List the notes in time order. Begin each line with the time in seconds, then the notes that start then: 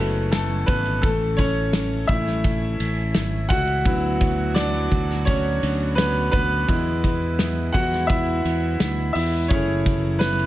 Already playing: F#1 E3 F#3 G#3 A3 B3 C#4 E4 F#4 G#4 A4 B4 C#5, impact
0.32 A3 A4, snare, ride
0.66 G#1 B3 B4, kick, ride
0.86 ride
1.02 A1 A3 A4, kick, ride
1.37 C#4 C#5, kick, ride
1.73 snare, ride
2.07 A1 A3 C#4 E4 E5, kick, ride
2.27 snare
2.44 kick, ride
2.80 A1, ride
3.15 G#1, snare, ride
3.49 C#2 F#4 F#5, kick, ride
3.67 ride
3.85 D2 D3 F#3 B3 E4 F#4, kick, ride
4.21 kick, ride
4.54 D4 D5, snare, ride
4.74 ride
4.91 D2, kick, ride
5.10 snare
5.25 C#4 C#5, kick, ride
5.63 D2, ride
5.95 B3 B4, snare, ride
6.31 D2 B3 B4, kick, ride
6.68 E2 G#3 B3 E4, kick, ride
7.04 kick, ride
7.39 snare, ride
7.72 E2 F#4 F#5, kick, ride
7.92 snare
8.07 E4 E5, kick, ride
8.45 E2, ride
8.80 D2, snare, ride
9.13 E2 E4 E5, open hi-hat, ride
9.48 F#1 C#3 E3 F#3 A3 C#4 E4 G#4 C#5, kick, hi-hat pedal, ride, tambourine
9.86 kick, ride, tambourine
10.19 B3 B4, snare, ride, tambourine
10.39 ride